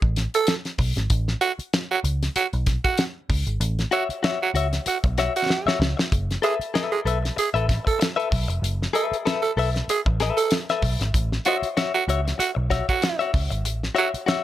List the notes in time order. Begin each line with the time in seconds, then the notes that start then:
0.02 A1, kick
0.16 snare, closed hi-hat
0.34 A4, closed hi-hat
0.47 snare, closed hi-hat
0.65 snare, closed hi-hat
0.78 B1, kick, open hi-hat
0.96 G#1, snare, closed hi-hat
1.10 A1, kick, closed hi-hat
1.28 snare
1.41 F#4, closed hi-hat
1.59 muted picked electric bass stroke, closed hi-hat
1.73 snare, closed hi-hat
1.91 F#4
2.04 C#2, closed hi-hat
2.23 snare, closed hi-hat
2.36 F#4, muted picked electric bass stroke, closed hi-hat
2.53 B1, closed hi-hat
2.66 kick, snare, closed hi-hat
2.84 F#4, kick, closed hi-hat
2.98 snare, closed hi-hat
3.29 C#2, kick, open hi-hat
3.47 G#1, closed hi-hat
3.60 A1, closed hi-hat
3.79 snare, closed hi-hat
3.91 F#4 C#5 E5, closed hi-hat
4.09 muted picked electric bass stroke, closed hi-hat
4.23 F#4 C#5 E5, snare, closed hi-hat
4.41 F#4, muted clean electric guitar stroke
4.54 C#2 F#4 C#5 E5, closed hi-hat
4.73 muted clean electric guitar stroke, snare, closed hi-hat
4.86 F#4, muted clean electric guitar stroke, muted picked electric bass stroke, closed hi-hat
5.04 B1, muted clean electric guitar stroke, kick, closed hi-hat
5.18 F#4 C#5 E5, snare, closed hi-hat
5.36 F#4, muted clean electric guitar stroke, closed hi-hat
5.49 muted clean electric guitar stroke, snare
5.66 F#4 C#5 E5, muted picked electric bass stroke, snare
5.80 C#2, muted clean electric guitar stroke, snare
5.97 muted clean electric guitar stroke, snare
6.12 F#1, kick, closed hi-hat
6.31 snare, closed hi-hat
6.42 G#4 A4 B4 E5, closed hi-hat
6.59 muted picked electric bass stroke, closed hi-hat
6.74 A4 B4 E5, snare, closed hi-hat
6.92 G#4, muted clean electric guitar stroke
7.05 B1 A4 B4 E5, closed hi-hat
7.23 muted clean electric guitar stroke, snare, closed hi-hat
7.36 G#4, muted clean electric guitar stroke, muted picked electric bass stroke, closed hi-hat
7.54 A1 A4 B4 E5, closed hi-hat
7.67 muted clean electric guitar stroke, kick, snare, closed hi-hat
7.85 A4, muted clean electric guitar stroke, kick, closed hi-hat
7.99 muted clean electric guitar stroke, snare, closed hi-hat
8.16 A4 B4 E5, closed hi-hat
8.30 B1, muted clean electric guitar stroke, kick, open hi-hat
8.48 F1, muted clean electric guitar stroke, closed hi-hat
8.62 F#1, closed hi-hat
8.82 snare
8.93 A4 B4 E5, closed hi-hat
9.12 muted picked electric bass stroke, closed hi-hat
9.25 A4 B4 E5, snare, closed hi-hat
9.42 A4, muted clean electric guitar stroke, closed hi-hat
9.57 B1 A4 B4 E5, open hi-hat
9.74 muted clean electric guitar stroke, snare, closed hi-hat
9.88 G#4, muted picked electric bass stroke, muted clean electric guitar stroke, closed hi-hat
10.06 A1, muted clean electric guitar stroke, kick
10.20 A4 B4 E5, snare, closed hi-hat
10.37 A4, muted clean electric guitar stroke, closed hi-hat
10.51 muted clean electric guitar stroke, snare, closed hi-hat
10.69 A4 B4 E5, snare, closed hi-hat
10.82 B1, muted clean electric guitar stroke, kick, open hi-hat
11.00 G#1, muted clean electric guitar stroke, snare, closed hi-hat
11.14 A1, kick, closed hi-hat
11.32 snare
11.45 F#4 C#5 E5, closed hi-hat
11.62 muted picked electric bass stroke, closed hi-hat
11.77 F#4 C#5 E5, snare, closed hi-hat
11.94 F#4, muted clean electric guitar stroke, closed hi-hat
12.08 C#2 F#4 C#5 E5, closed hi-hat
12.25 muted clean electric guitar stroke, snare, closed hi-hat
12.38 F#4, muted clean electric guitar stroke, muted picked electric bass stroke, closed hi-hat
12.55 B1, muted clean electric guitar stroke
12.70 F#4 C#5 E5, kick, snare, closed hi-hat
12.89 F#4, muted clean electric guitar stroke, kick, closed hi-hat
13.02 muted clean electric guitar stroke, snare, closed hi-hat
13.19 F#4 C#5 E5, closed hi-hat
13.32 C#2, muted clean electric guitar stroke, kick, open hi-hat
13.50 G#1, muted clean electric guitar stroke, closed hi-hat
13.65 A1, closed hi-hat
13.83 snare
13.95 F#4 C#5 E5, closed hi-hat
14.14 muted picked electric bass stroke, closed hi-hat
14.26 F#4 C#5 E5, snare, closed hi-hat